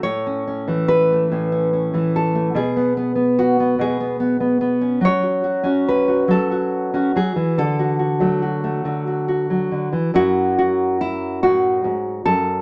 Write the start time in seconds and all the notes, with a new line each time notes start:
Already playing: A3
0.03 A2 C#5
0.27 C#4
0.47 C#4
0.68 E3 A3
0.88 B4
1.12 A3
1.32 A2 C#4
1.52 C#4
1.73 C#4
1.94 E3 A3
2.16 A4
2.35 A3
2.55 B2 G#4
2.76 B3
2.97 B3
3.15 B3
3.39 F#4
3.60 B3
3.79 B2 G#4
4.00 B3
4.20 B3
4.40 B3
4.61 B3
4.81 C#4
5.01 F#3
5.05 C#5
5.23 F#4
5.44 F#4
5.63 C#4 F#4
5.88 B4
6.08 F#4
6.28 F#3 A4
6.51 F#4
6.94 C#4 F#4
7.16 F#3 G#4
7.36 E3
7.58 D3 A4
7.79 F#4
7.99 F#4
8.20 F#3 A3
8.42 F#4
8.64 A3
8.85 D3 F#4
9.07 F#4
9.28 F#4
9.50 F#3
9.71 D3
9.93 E3
10.14 F#2 F#3 E4 F#4
10.59 F#4
11.01 E4
11.43 A2 F#4
11.84 G#2
12.26 F#2 A4